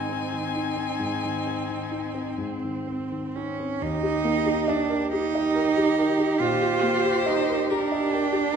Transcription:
Already playing: grand piano G#2 D#3 C4 D#4, viola C4, cello D#4, violin G#5
0.09 grand piano C4
0.32 grand piano D#3
0.55 grand piano D#4
0.77 grand piano C4
1.00 grand piano G#2
1.24 grand piano D#3
1.47 grand piano C4
1.70 grand piano D#3
1.91 grand piano D#4
2.15 grand piano C4
2.38 grand piano G#2, cello C4
2.64 grand piano D#3
2.87 grand piano C4
3.12 grand piano D#3
3.36 cello C#4, grand piano D#4
3.60 grand piano C4
3.82 grand piano D#2, cello D#4, viola G4
4.03 grand piano G4
4.24 grand piano A#3
4.46 grand piano G4
4.68 cello D4, grand piano D#5
4.90 grand piano A#4
5.12 cello D#4, grand piano G4
5.35 grand piano D#5
5.55 grand piano A#4
5.77 grand piano G4
5.98 grand piano A#4
6.19 grand piano G4
6.39 grand piano A#2, cello F4, violin C5
6.62 grand piano G4
6.83 grand piano A#3
7.05 grand piano G4
7.26 cello D#4, grand piano D#5
7.50 grand piano A#4
7.70 cello D4, grand piano G4, violin A#4
7.92 grand piano D#5
8.12 violin G4, grand piano A#4
8.33 grand piano G4
8.52 violin A#4

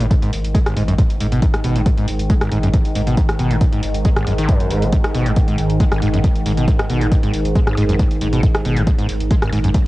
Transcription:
Already playing: ambient pad G#2 D#3
0.00 sub bass G#1, acid bass G#2, closed hi-hat
0.11 acid bass G#2, kick, closed hi-hat
0.22 acid bass G#2, closed hi-hat
0.33 sub bass G#1, open hi-hat
0.44 sub bass G#1, closed hi-hat
0.55 acid bass G#3, kick, closed hi-hat
0.66 acid bass G#1, cross-stick, closed hi-hat
0.76 sub bass G#1, acid bass G#2, open hi-hat
0.88 sub bass G#1, acid bass F#2, closed hi-hat
0.98 acid bass G#2, kick, closed hi-hat
1.10 closed hi-hat
1.20 sub bass G#1, acid bass G#2, open hi-hat
1.32 sub bass G#1, acid bass B2, closed hi-hat
1.42 acid bass G#2, kick, closed hi-hat
1.54 cross-stick, closed hi-hat
1.64 sub bass G#1, acid bass B2, open hi-hat
1.76 sub bass G#1, acid bass G#2, closed hi-hat
1.86 acid bass G#2, kick, closed hi-hat
1.97 acid bass G#2, closed hi-hat
2.08 sub bass G#1, open hi-hat
2.19 sub bass G#1, closed hi-hat
2.30 acid bass G#3, kick, closed hi-hat
2.41 acid bass G#1, cross-stick, closed hi-hat
2.52 sub bass G#1, acid bass G#2, open hi-hat
2.63 sub bass G#1, acid bass F#2, closed hi-hat
2.74 acid bass G#2, kick, closed hi-hat
2.85 closed hi-hat
2.95 sub bass G#1, acid bass G#2, open hi-hat
3.07 sub bass G#1, acid bass B2, closed hi-hat
3.17 acid bass G#2, kick, closed hi-hat
3.29 cross-stick, closed hi-hat
3.39 sub bass G#1, acid bass B2, open hi-hat
3.51 sub bass G#1, acid bass G#2, closed hi-hat
3.61 acid bass G#2, kick, closed hi-hat
3.73 acid bass G#2, closed hi-hat
3.83 sub bass G#1, open hi-hat
3.94 sub bass G#1, closed hi-hat
4.05 acid bass G#3, kick, closed hi-hat
4.16 acid bass G#1, cross-stick, closed hi-hat
4.27 sub bass G#1, acid bass F#2, open hi-hat
4.38 sub bass G#1, acid bass D#3, closed hi-hat
4.49 acid bass F#2, kick, closed hi-hat
4.60 closed hi-hat
4.71 sub bass G#1, acid bass G#2, open hi-hat
4.82 sub bass G#1, acid bass A#2, closed hi-hat
4.92 acid bass G#2, kick, closed hi-hat
5.04 cross-stick, closed hi-hat
5.14 sub bass G#1, acid bass B2, open hi-hat
5.26 sub bass G#1, acid bass G#2, closed hi-hat
5.36 acid bass G#2, kick, closed hi-hat
5.48 acid bass G#2, closed hi-hat
5.58 sub bass G#1, open hi-hat
5.70 sub bass G#1, closed hi-hat
5.80 acid bass G#3, kick, closed hi-hat
5.92 acid bass G#1, cross-stick, closed hi-hat
6.02 sub bass G#1, acid bass G#2, open hi-hat
6.14 sub bass G#1, acid bass F#2, closed hi-hat
6.24 acid bass G#2, kick, closed hi-hat
6.36 closed hi-hat
6.46 sub bass G#1, acid bass G#2, open hi-hat
6.57 sub bass G#1, acid bass B2, closed hi-hat
6.68 acid bass G#2, kick, closed hi-hat
6.79 cross-stick, closed hi-hat
6.90 sub bass G#1, acid bass B2, open hi-hat
7.01 sub bass G#1, acid bass G#2, closed hi-hat
7.12 acid bass G#2, kick, closed hi-hat
7.23 acid bass G#2, closed hi-hat
7.33 sub bass G#1, open hi-hat
7.45 sub bass G#1, closed hi-hat
7.55 acid bass G#3, kick, closed hi-hat
7.67 acid bass G#1, cross-stick, closed hi-hat
7.77 sub bass G#1, acid bass G#2, open hi-hat
7.89 sub bass G#1, acid bass F#2, closed hi-hat
7.99 acid bass G#2, kick, closed hi-hat
8.11 closed hi-hat
8.21 sub bass G#1, acid bass G#2, open hi-hat
8.33 sub bass G#1, acid bass B2, closed hi-hat
8.43 acid bass G#2, kick, closed hi-hat
8.55 cross-stick, closed hi-hat
8.65 sub bass G#1, acid bass B2, open hi-hat
8.76 sub bass G#1, acid bass G#2, closed hi-hat
8.87 acid bass G#2, kick, closed hi-hat
8.98 acid bass G#2, closed hi-hat
9.09 sub bass G#1, open hi-hat
9.20 sub bass G#1, closed hi-hat
9.31 acid bass G#3, kick, closed hi-hat
9.42 acid bass G#1, cross-stick, closed hi-hat
9.52 sub bass G#1, acid bass G#2, open hi-hat
9.64 sub bass G#1, acid bass F#2, closed hi-hat
9.74 acid bass G#2, kick, closed hi-hat

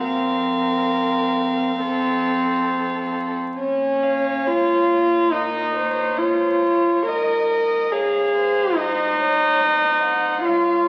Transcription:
0.00 cello F2, viola C4, violin A#4 F5
1.81 cello F2, viola C4, violin A4
3.59 cello A#2, viola C#4, violin C#5
4.03 violin F5
4.46 viola F4
5.32 viola D#4, violin A#4 D#5
5.75 violin C5 C#5
6.18 viola F4, violin C5 C#5
6.65 violin C#5
7.06 cello G#2, viola A#4, violin D#5
7.49 violin D#5
7.92 viola G#4, violin C#5 F5
8.35 violin C5
8.76 viola D#4, violin C5 D#5
9.20 violin C#5
9.61 cello C2, violin C5 D#5
10.03 violin F#5
10.45 cello C#2, viola F4, violin C#5 F5

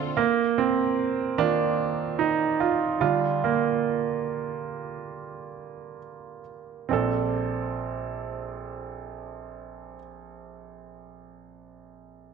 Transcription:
Already playing: string section D3 C4 F4 A4, grand piano D3 C4 F4
0.17 grand piano A#3
0.58 grand piano C4
1.38 grand piano D#3 A#3 D4 F4
2.19 grand piano D#4
2.60 grand piano F4
3.00 grand piano D3 G3 D4 F4
3.44 grand piano A#3
6.89 grand piano A#1 C4 D4
6.93 grand piano A4

